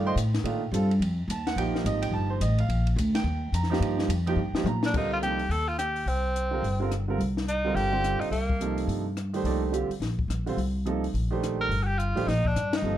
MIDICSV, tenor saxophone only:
0, 0, Header, 1, 2, 480
1, 0, Start_track
1, 0, Tempo, 281294
1, 773, Time_signature, 4, 2, 24, 8
1, 22144, End_track
2, 0, Start_track
2, 0, Title_t, "Tenor saxophone"
2, 0, Program_c, 0, 66
2, 8287, Note_on_c, 0, 62, 83
2, 8439, Note_off_c, 0, 62, 0
2, 8477, Note_on_c, 0, 63, 84
2, 8725, Note_off_c, 0, 63, 0
2, 8756, Note_on_c, 0, 65, 90
2, 8832, Note_off_c, 0, 65, 0
2, 8924, Note_on_c, 0, 67, 96
2, 9400, Note_on_c, 0, 69, 99
2, 9426, Note_off_c, 0, 67, 0
2, 9689, Note_on_c, 0, 65, 84
2, 9715, Note_off_c, 0, 69, 0
2, 9859, Note_off_c, 0, 65, 0
2, 9869, Note_on_c, 0, 67, 91
2, 10383, Note_on_c, 0, 60, 81
2, 10409, Note_off_c, 0, 67, 0
2, 11810, Note_off_c, 0, 60, 0
2, 12768, Note_on_c, 0, 63, 89
2, 13235, Note_on_c, 0, 67, 100
2, 13261, Note_off_c, 0, 63, 0
2, 14003, Note_on_c, 0, 63, 69
2, 14029, Note_off_c, 0, 67, 0
2, 14179, Note_off_c, 0, 63, 0
2, 14189, Note_on_c, 0, 58, 80
2, 15090, Note_off_c, 0, 58, 0
2, 19809, Note_on_c, 0, 70, 89
2, 20188, Note_on_c, 0, 66, 62
2, 20213, Note_off_c, 0, 70, 0
2, 20252, Note_on_c, 0, 67, 98
2, 20277, Note_off_c, 0, 66, 0
2, 20457, Note_on_c, 0, 65, 87
2, 20483, Note_off_c, 0, 67, 0
2, 20954, Note_on_c, 0, 63, 87
2, 20980, Note_off_c, 0, 65, 0
2, 21277, Note_on_c, 0, 62, 89
2, 21302, Note_off_c, 0, 63, 0
2, 21774, Note_on_c, 0, 63, 74
2, 21799, Note_off_c, 0, 62, 0
2, 22144, Note_off_c, 0, 63, 0
2, 22144, End_track
0, 0, End_of_file